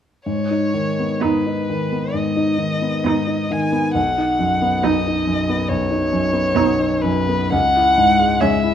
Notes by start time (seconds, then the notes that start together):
0.26 G#2 C#5
0.50 D#4
0.74 D#3
0.99 B3
1.20 G#2 B3 D#4 B4
1.46 D#4
1.70 D#3
1.92 B3
2.14 G#2 D#5
2.36 D#4
2.58 D#3
2.82 B3
3.04 G#2 B3 D#4
3.27 D#4
3.50 D#3 G#5
3.72 B3
3.94 B1 F#5
4.17 D#4
4.39 F#2
4.62 B3
4.83 B1 B3 D#4 D#5
5.07 D#4
5.27 F#2
5.49 B3
5.69 B1 C#5
5.91 D#4
6.12 F#2
6.33 B3
6.55 B1 B3 D#4
6.79 D#4
7.02 F#2 B4
7.29 B3
7.50 C#2 F#5
7.76 E4
7.98 G#2
8.19 G#3
8.40 C#2 G#3 C#4 E5
8.63 E4